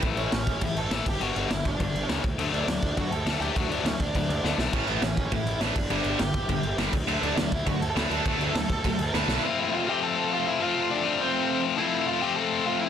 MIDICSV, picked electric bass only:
0, 0, Header, 1, 2, 480
1, 0, Start_track
1, 0, Tempo, 293542
1, 57, Time_signature, 4, 2, 24, 8
1, 21081, End_track
2, 0, Start_track
2, 0, Title_t, "Picked electric bass"
2, 0, Program_c, 0, 34
2, 40, Note_on_c, 0, 33, 90
2, 191, Note_off_c, 0, 33, 0
2, 292, Note_on_c, 0, 33, 85
2, 439, Note_off_c, 0, 33, 0
2, 531, Note_on_c, 0, 33, 90
2, 678, Note_off_c, 0, 33, 0
2, 763, Note_on_c, 0, 33, 79
2, 913, Note_off_c, 0, 33, 0
2, 1005, Note_on_c, 0, 45, 86
2, 1154, Note_off_c, 0, 45, 0
2, 1233, Note_on_c, 0, 33, 89
2, 1386, Note_off_c, 0, 33, 0
2, 1472, Note_on_c, 0, 33, 93
2, 1625, Note_off_c, 0, 33, 0
2, 1735, Note_on_c, 0, 31, 90
2, 1881, Note_off_c, 0, 31, 0
2, 1980, Note_on_c, 0, 31, 93
2, 2125, Note_off_c, 0, 31, 0
2, 2220, Note_on_c, 0, 31, 84
2, 2364, Note_off_c, 0, 31, 0
2, 2455, Note_on_c, 0, 31, 83
2, 2601, Note_off_c, 0, 31, 0
2, 2703, Note_on_c, 0, 31, 87
2, 2847, Note_off_c, 0, 31, 0
2, 2939, Note_on_c, 0, 31, 96
2, 3084, Note_off_c, 0, 31, 0
2, 3172, Note_on_c, 0, 31, 95
2, 3319, Note_off_c, 0, 31, 0
2, 3411, Note_on_c, 0, 37, 90
2, 3559, Note_off_c, 0, 37, 0
2, 3663, Note_on_c, 0, 38, 88
2, 3807, Note_off_c, 0, 38, 0
2, 3899, Note_on_c, 0, 38, 97
2, 4044, Note_off_c, 0, 38, 0
2, 4129, Note_on_c, 0, 38, 84
2, 4278, Note_off_c, 0, 38, 0
2, 4374, Note_on_c, 0, 38, 92
2, 4521, Note_off_c, 0, 38, 0
2, 4620, Note_on_c, 0, 38, 87
2, 4765, Note_off_c, 0, 38, 0
2, 4859, Note_on_c, 0, 50, 91
2, 5004, Note_off_c, 0, 50, 0
2, 5083, Note_on_c, 0, 38, 89
2, 5233, Note_off_c, 0, 38, 0
2, 5312, Note_on_c, 0, 38, 91
2, 5465, Note_off_c, 0, 38, 0
2, 5553, Note_on_c, 0, 38, 84
2, 5707, Note_off_c, 0, 38, 0
2, 5825, Note_on_c, 0, 38, 96
2, 5968, Note_off_c, 0, 38, 0
2, 6035, Note_on_c, 0, 38, 77
2, 6187, Note_off_c, 0, 38, 0
2, 6270, Note_on_c, 0, 38, 93
2, 6424, Note_off_c, 0, 38, 0
2, 6539, Note_on_c, 0, 38, 91
2, 6684, Note_off_c, 0, 38, 0
2, 6783, Note_on_c, 0, 38, 93
2, 6927, Note_off_c, 0, 38, 0
2, 7011, Note_on_c, 0, 38, 92
2, 7159, Note_off_c, 0, 38, 0
2, 7243, Note_on_c, 0, 38, 95
2, 7393, Note_off_c, 0, 38, 0
2, 7484, Note_on_c, 0, 35, 90
2, 7634, Note_off_c, 0, 35, 0
2, 7732, Note_on_c, 0, 33, 89
2, 7879, Note_off_c, 0, 33, 0
2, 7972, Note_on_c, 0, 33, 84
2, 8119, Note_off_c, 0, 33, 0
2, 8206, Note_on_c, 0, 33, 89
2, 8355, Note_off_c, 0, 33, 0
2, 8454, Note_on_c, 0, 33, 78
2, 8601, Note_off_c, 0, 33, 0
2, 8696, Note_on_c, 0, 45, 90
2, 8842, Note_off_c, 0, 45, 0
2, 8917, Note_on_c, 0, 33, 85
2, 9069, Note_off_c, 0, 33, 0
2, 9158, Note_on_c, 0, 33, 92
2, 9310, Note_off_c, 0, 33, 0
2, 9415, Note_on_c, 0, 31, 84
2, 9561, Note_off_c, 0, 31, 0
2, 9644, Note_on_c, 0, 31, 90
2, 9794, Note_off_c, 0, 31, 0
2, 9882, Note_on_c, 0, 31, 84
2, 10032, Note_off_c, 0, 31, 0
2, 10130, Note_on_c, 0, 31, 95
2, 10278, Note_off_c, 0, 31, 0
2, 10370, Note_on_c, 0, 31, 88
2, 10518, Note_off_c, 0, 31, 0
2, 10612, Note_on_c, 0, 31, 93
2, 10759, Note_off_c, 0, 31, 0
2, 10847, Note_on_c, 0, 31, 91
2, 10995, Note_off_c, 0, 31, 0
2, 11086, Note_on_c, 0, 31, 86
2, 11235, Note_off_c, 0, 31, 0
2, 11333, Note_on_c, 0, 38, 90
2, 11480, Note_off_c, 0, 38, 0
2, 11563, Note_on_c, 0, 38, 94
2, 11713, Note_off_c, 0, 38, 0
2, 11808, Note_on_c, 0, 38, 89
2, 11957, Note_off_c, 0, 38, 0
2, 12041, Note_on_c, 0, 38, 85
2, 12191, Note_off_c, 0, 38, 0
2, 12297, Note_on_c, 0, 38, 91
2, 12443, Note_off_c, 0, 38, 0
2, 12531, Note_on_c, 0, 50, 87
2, 12678, Note_off_c, 0, 50, 0
2, 12756, Note_on_c, 0, 38, 84
2, 12908, Note_off_c, 0, 38, 0
2, 13001, Note_on_c, 0, 38, 89
2, 13152, Note_off_c, 0, 38, 0
2, 13242, Note_on_c, 0, 38, 93
2, 13392, Note_off_c, 0, 38, 0
2, 13494, Note_on_c, 0, 38, 92
2, 13641, Note_off_c, 0, 38, 0
2, 13718, Note_on_c, 0, 38, 82
2, 13869, Note_off_c, 0, 38, 0
2, 13968, Note_on_c, 0, 38, 89
2, 14116, Note_off_c, 0, 38, 0
2, 14212, Note_on_c, 0, 38, 84
2, 14359, Note_off_c, 0, 38, 0
2, 14462, Note_on_c, 0, 38, 93
2, 14606, Note_off_c, 0, 38, 0
2, 14701, Note_on_c, 0, 38, 87
2, 14845, Note_off_c, 0, 38, 0
2, 14936, Note_on_c, 0, 38, 86
2, 15082, Note_off_c, 0, 38, 0
2, 15166, Note_on_c, 0, 35, 92
2, 15315, Note_off_c, 0, 35, 0
2, 21081, End_track
0, 0, End_of_file